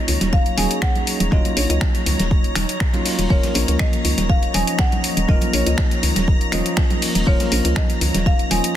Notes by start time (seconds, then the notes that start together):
Already playing: F#3 A#3 C#4 D#4 F4 C#5 D#5 A#5
0.08 C#2, open hi-hat, low conga
0.21 D#1, snare, closed hi-hat, high conga
0.33 F5, kick, muted conga, shaker
0.46 closed hi-hat
0.56 D#1 F#3 A#3 C#4 D#4 G#4 G#5, open hi-hat, high conga, shaker
0.71 closed hi-hat
0.82 F#5, finger snap, kick, snare
0.96 closed hi-hat, high conga
1.07 open hi-hat, shaker
1.20 D#1, closed hi-hat, muted conga
1.31 D#1 F#3 A#3 C#4 D#4 F4 D#5, kick, shaker
1.45 closed hi-hat, high conga
1.57 A#1 C#5, open hi-hat, shaker
1.70 C#2 D#5, closed hi-hat, muted conga
1.81 finger snap, kick, snare, high conga
1.94 snare, closed hi-hat
2.06 C#2, open hi-hat, muted conga, low conga, shaker
2.19 D#1, snare, closed hi-hat, high conga
2.31 kick, shaker
2.44 closed hi-hat
2.55 D#1, finger snap, open hi-hat, muted conga, high conga
2.69 closed hi-hat
2.80 finger snap, kick, snare
2.93 F#3 A#3 C#4 D#4 F4, closed hi-hat, muted conga, high conga
3.05 F#3 A#3 C#4 D#4 F4, open hi-hat
3.19 D#1, closed hi-hat
3.29 D#1 F3 A#3 C#4 F4 A#4 C#5, kick, shaker
3.43 snare, closed hi-hat, high conga
3.54 A#1, open hi-hat, muted conga, shaker
3.68 C#2, closed hi-hat
3.79 D#5, finger snap, kick, snare, high conga
3.93 closed hi-hat, muted conga
4.05 C#2, open hi-hat, low conga, shaker
4.18 D#1, snare, closed hi-hat, high conga
4.29 F5, kick, shaker
4.43 closed hi-hat, muted conga
4.53 D#1 F3 A#3 C#4 D#5 G#5, open hi-hat, high conga, shaker
4.67 closed hi-hat
4.79 F#5, finger snap, kick, snare, muted conga
4.92 closed hi-hat, high conga
5.04 open hi-hat
5.17 D#1, closed hi-hat
5.28 D#1 F3 A#3 C#4 F4 A#4 D#5, kick, muted conga, shaker
5.41 closed hi-hat, high conga
5.53 A#1 C#5, open hi-hat, shaker
5.66 C#2 D#5, closed hi-hat, muted conga
5.78 finger snap, kick, snare, high conga, shaker
5.91 snare, closed hi-hat
6.03 C#2, open hi-hat, low conga, shaker
6.16 D#1, snare, closed hi-hat, muted conga, high conga
6.27 kick, shaker
6.41 closed hi-hat
6.51 D#1 F3 A#3 C#4 F4 D#5, finger snap, open hi-hat, muted conga, high conga, shaker
6.66 closed hi-hat
6.77 finger snap, kick, snare
6.90 closed hi-hat, high conga
7.02 open hi-hat, muted conga
7.15 D#1, closed hi-hat
7.26 D#1 F3 A#3 C#4 F4 A#4 C#5, kick, shaker
7.40 snare, closed hi-hat, muted conga, high conga
7.52 A#1, open hi-hat, shaker
7.65 C#2, closed hi-hat
7.76 D#5, finger snap, kick, snare, high conga
7.90 closed hi-hat, muted conga
8.01 C#2, open hi-hat, low conga
8.14 D#1, snare, closed hi-hat, high conga
8.26 F5, kick, muted conga, shaker
8.39 closed hi-hat
8.50 D#1 F3 A#3 C#4 F4 D#5 G#5, open hi-hat, high conga, shaker
8.64 closed hi-hat